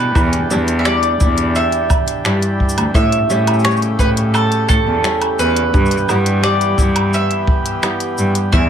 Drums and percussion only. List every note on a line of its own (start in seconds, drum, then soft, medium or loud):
0.15 kick loud
0.15 low woodblock medium
0.15 shaker soft
0.33 closed hi-hat soft
0.33 shaker soft
0.51 shaker medium
0.68 closed hi-hat medium
0.68 shaker soft
0.85 finger snap medium
0.85 shaker soft
1.03 closed hi-hat soft
1.03 shaker soft
1.20 kick loud
1.20 shaker medium
1.38 closed hi-hat medium
1.38 shaker soft
1.55 shaker soft
1.72 closed hi-hat soft
1.72 shaker soft
1.90 kick loud
1.90 low woodblock medium
1.90 shaker medium
2.08 closed hi-hat medium
2.08 shaker soft
2.25 finger snap medium
2.25 shaker soft
2.42 closed hi-hat soft
2.42 shaker soft
2.60 kick medium
2.69 shaker medium
2.78 closed hi-hat medium
2.78 low woodblock medium
2.78 shaker soft
2.94 kick loud
2.94 shaker soft
3.12 closed hi-hat soft
3.12 shaker soft
3.30 shaker medium
3.47 closed hi-hat medium
3.47 low woodblock medium
3.47 shaker soft
3.53 shaker soft
3.59 shaker soft
3.65 finger snap medium
3.65 shaker soft
3.71 shaker soft
3.77 shaker soft
3.82 closed hi-hat soft
3.82 shaker soft
3.99 kick medium
3.99 shaker medium
4.17 closed hi-hat medium
4.17 shaker soft
4.35 low woodblock medium
4.35 shaker soft
4.52 closed hi-hat soft
4.52 shaker soft
4.69 kick loud
4.69 shaker medium
5.04 finger snap medium
5.04 shaker soft
5.22 closed hi-hat soft
5.22 low woodblock medium
5.22 shaker soft
5.39 shaker medium
5.57 closed hi-hat medium
5.74 kick loud
5.74 shaker soft
5.86 shaker soft
5.91 closed hi-hat soft
5.91 shaker soft
5.97 shaker soft
6.09 low woodblock medium
6.09 shaker medium
6.26 closed hi-hat medium
6.26 shaker soft
6.44 finger snap medium
6.44 shaker soft
6.61 closed hi-hat soft
6.61 shaker soft
6.78 kick medium
6.78 shaker medium
6.96 closed hi-hat medium
6.96 low woodblock medium
7.13 shaker soft
7.31 closed hi-hat soft
7.31 shaker soft
7.47 kick loud
7.66 closed hi-hat medium
7.66 shaker soft
7.83 finger snap medium
7.83 low woodblock medium
7.83 shaker soft
8.00 closed hi-hat soft
8.00 shaker soft
8.18 shaker medium
8.35 closed hi-hat medium
8.35 shaker soft
8.53 kick loud
8.53 shaker soft